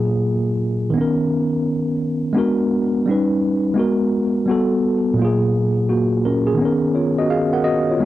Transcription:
Already playing: A#2 F#3 A#3 F4 G#4
0.90 D#3 B3
0.97 C#4 A#4
2.33 G#3 B3 D4
2.37 F#4 A#4
3.06 G3 C#4 D#4
3.11 B4
3.74 G#3 B3 F#4
3.79 A#4
4.46 G3 B3 F#4
4.51 A4
5.14 A#2 F#3
5.19 A#3 F4
5.25 G#4
5.89 A#3 F#4
6.25 C#4 A#4
6.47 G#4
6.54 D#3 B3
6.61 C#4 A#4
6.95 F4 C#5
7.19 F#4 D#5
7.30 G#4 F5
7.53 A#4 F#5
7.64 F#4 D#5
7.91 F4 C#5
8.00 G#3 B3

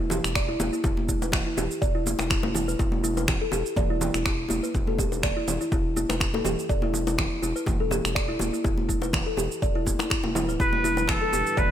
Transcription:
Already playing: E1
0.10 G4, low bongo, high conga, low conga, shaker
0.24 E1, finger snap, shaker
0.35 D5, finger snap, kick, low bongo, shaker
0.48 E4
0.60 E1, low bongo, high conga, shaker
0.73 E4, shaker
0.84 E1 E4, kick, low bongo, shaker
0.97 high conga
1.08 E4, kick, low bongo, shaker
1.22 B4, high bongo, shaker
1.32 finger snap, kick, low bongo, high conga, low conga, shaker
1.46 E4
1.57 E1 G4, low bongo, low conga, shaker
1.71 shaker
1.82 E1 D5, kick, low bongo, shaker
1.95 E4
2.06 low bongo, high conga, shaker
2.19 E1 E4, finger snap, high bongo, shaker
2.30 E4, finger snap, kick, low bongo, shaker
2.43 high bongo, high conga
2.54 E4, low bongo, low conga, shaker
2.68 B4, shaker
2.79 E1 E4, kick, low bongo, shaker
2.92 high conga
3.04 E4, low bongo, shaker
3.17 B4, high bongo, shaker
3.28 finger snap, kick, low bongo, high conga, low conga, shaker
3.41 A4
3.52 E1 G4, low bongo, shaker
3.66 shaker
3.76 E1 D5, kick, low bongo, high conga, low conga, shaker
3.90 E4
4.01 low bongo, high conga, low conga, shaker
4.14 E1 E4, finger snap, shaker
4.25 E4, finger snap, kick, low bongo, shaker
4.49 E1 E4, low bongo, high conga, shaker
4.63 B4, shaker
4.74 E1, kick, low bongo, shaker
4.87 A4, high conga
4.99 G4, kick, low bongo, shaker
5.12 high bongo, shaker
5.23 D5, finger snap, kick, low bongo, high conga, low conga, shaker
5.37 E4
5.48 E1, low bongo, low conga, shaker
5.61 E4, shaker
5.72 E1 E4, kick, low bongo, shaker
5.96 E4, low bongo, high conga, shaker
6.09 E1 B4, finger snap, high bongo, shaker
6.20 finger snap, kick, low bongo, shaker
6.34 A4, high bongo, high conga
6.45 E1 G4, low bongo, low conga, shaker
6.59 shaker
6.69 E1 D5, kick, low bongo, shaker
6.82 E4, high conga
6.93 low bongo, shaker
7.07 E4, high bongo, shaker
7.18 E4, finger snap, kick, low bongo, high conga, low conga, shaker
7.42 E1 E4, low bongo, shaker
7.56 B4, shaker
7.66 E1, kick, low bongo, high conga, low conga, shaker
7.80 A4
7.91 G4, low bongo, high conga, low conga, shaker
8.05 E1, finger snap, shaker
8.15 D5, finger snap, kick, low bongo, shaker
8.28 E4
8.39 E1, low bongo, high conga, shaker
8.53 E4, shaker
8.64 E1 E4, kick, low bongo, shaker
8.78 high conga
8.89 E4, kick, low bongo, shaker
9.02 B4, high bongo, shaker
9.13 finger snap, kick, low bongo, high conga, low conga, shaker
9.26 A4
9.37 E1 G4, low bongo, low conga, shaker
9.52 shaker
9.62 E1 D5, kick, low bongo, shaker
9.75 E4
9.86 kick, low bongo, high conga, shaker
9.99 E4, finger snap, high bongo, shaker
10.10 E4, finger snap, kick, low bongo, shaker
10.24 E1, high bongo, high conga
10.35 E4, low bongo, low conga, shaker
10.48 D1 B4, shaker
10.60 E1 G3 D4 E4 B4, kick, low bongo, shaker
10.73 high conga
10.84 E4, low bongo, shaker
10.97 B4, high bongo, shaker
11.08 A4, finger snap, kick, low bongo, high conga, low conga, shaker
11.22 A4
11.33 E1 G4, low bongo, shaker
11.47 shaker
11.57 E1 B4 D5, kick, low bongo, high conga, low conga, shaker

